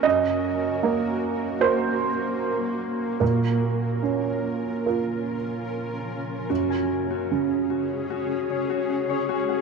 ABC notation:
X:1
M:4/4
L:1/16
Q:1/4=76
K:Bbm
V:1 name="Ambient pad"
[B,GB]16 | [DFB]16 | [K:Gblyd] [DAd]16 |]
V:2 name="Harp"
z16 | z16 | [K:Gblyd] G a2 G3 G2 G2 d G g d G g |]
V:3 name="Upright piano"
e8 c8 | B12- B2 z2 | [K:Gblyd] z16 |]
V:4 name="Upright piano"
G,,4 B,4 [GB]8 | B,,4 D4 [FB]8 | [K:Gblyd] G,,4 D,12 |]